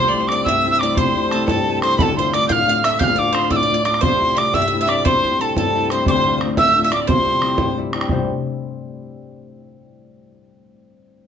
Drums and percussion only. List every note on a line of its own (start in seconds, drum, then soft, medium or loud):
0.14 bodhran soft
0.29 bodhran medium
0.46 bodhran medium
0.81 bodhran medium
0.97 bodhran medium
1.15 bodhran soft
1.31 bodhran medium
1.48 bodhran medium
1.82 bodhran medium
1.99 bodhran loud
2.17 bodhran soft
2.33 bodhran medium
2.50 bodhran loud
2.84 bodhran medium
3.01 bodhran medium
3.18 bodhran soft
3.35 bodhran medium
3.51 bodhran medium
3.85 bodhran medium
3.94 bodhran medium
4.03 bodhran medium
4.22 bodhran soft
4.38 bodhran medium
4.54 bodhran loud
4.89 bodhran medium
5.06 bodhran loud
5.24 bodhran soft
5.56 bodhran medium
5.90 bodhran medium
6.06 bodhran medium
6.24 bodhran soft
6.41 bodhran medium
6.57 bodhran loud
6.92 bodhran medium
7.09 bodhran loud
7.26 bodhran soft
7.42 bodhran medium
7.58 bodhran medium
7.93 bodhran medium
8.01 bodhran medium
8.09 bodhran medium